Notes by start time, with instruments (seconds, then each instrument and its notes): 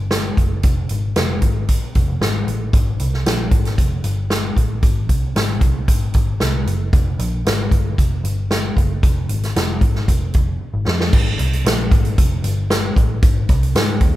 Already playing: picked electric bass G1
0.11 snare, closed hi-hat
0.37 picked electric bass F#1, kick, closed hi-hat
0.63 picked electric bass F1, kick, closed hi-hat
0.89 picked electric bass G#1, closed hi-hat
1.16 picked electric bass F1, snare, closed hi-hat
1.42 picked electric bass G#1, kick, closed hi-hat
1.69 kick, closed hi-hat
1.95 picked electric bass F1, kick, closed hi-hat
2.08 picked electric bass F1
2.21 picked electric bass G#1, snare, closed hi-hat
2.47 picked electric bass A1, closed hi-hat
2.73 picked electric bass G#1, kick, closed hi-hat
3.00 picked electric bass C2, closed hi-hat
3.14 snare
3.26 picked electric bass A#1, snare, closed hi-hat
3.51 picked electric bass G#1, kick, closed hi-hat
3.65 snare, closed hi-hat
3.78 picked electric bass F1, kick, closed hi-hat
4.04 picked electric bass G1, closed hi-hat
4.30 snare, closed hi-hat
4.57 picked electric bass A1, kick, closed hi-hat
4.83 picked electric bass G#1, kick, closed hi-hat
5.09 picked electric bass C2, kick, closed hi-hat
5.36 picked electric bass G#1, snare, closed hi-hat
5.61 picked electric bass C2, kick, closed hi-hat
5.88 picked electric bass G#1, kick, closed hi-hat
6.14 picked electric bass G#1, kick, closed hi-hat
6.40 picked electric bass C2, snare, closed hi-hat
6.66 picked electric bass F#1, closed hi-hat
6.93 picked electric bass F1, kick, closed hi-hat
7.19 picked electric bass A#1, closed hi-hat
7.45 picked electric bass G#1, snare, closed hi-hat
7.71 picked electric bass G1, kick, closed hi-hat
7.98 picked electric bass F1, kick, closed hi-hat
8.24 picked electric bass G1, closed hi-hat
8.51 snare, closed hi-hat
8.77 picked electric bass F#1, kick, closed hi-hat
9.03 picked electric bass F1, kick, closed hi-hat
9.29 picked electric bass G#1, closed hi-hat
9.43 snare, closed hi-hat
9.56 picked electric bass F1, snare, closed hi-hat
9.81 picked electric bass G#1, kick, closed hi-hat
9.95 snare
10.08 picked electric bass F1, kick, closed hi-hat
10.34 picked electric bass F1, kick, closed hi-hat
10.61 muted picked electric bass stroke
10.74 picked electric bass G#1
10.87 picked electric bass F2, snare
11.00 snare
11.13 picked electric bass G#1, kick, crash
11.39 picked electric bass C2, closed hi-hat
11.53 closed hi-hat
11.65 picked electric bass A#1, snare, closed hi-hat
11.91 picked electric bass G#1, kick, closed hi-hat
12.05 closed hi-hat
12.18 picked electric bass F1, kick, closed hi-hat
12.44 picked electric bass G1, closed hi-hat
12.70 snare, closed hi-hat
12.96 picked electric bass A1, kick, closed hi-hat
13.22 picked electric bass G#1, kick, closed hi-hat
13.49 picked electric bass C2, kick, closed hi-hat
13.63 closed hi-hat
13.75 picked electric bass G#2, snare, closed hi-hat
14.01 picked electric bass D#2, kick, closed hi-hat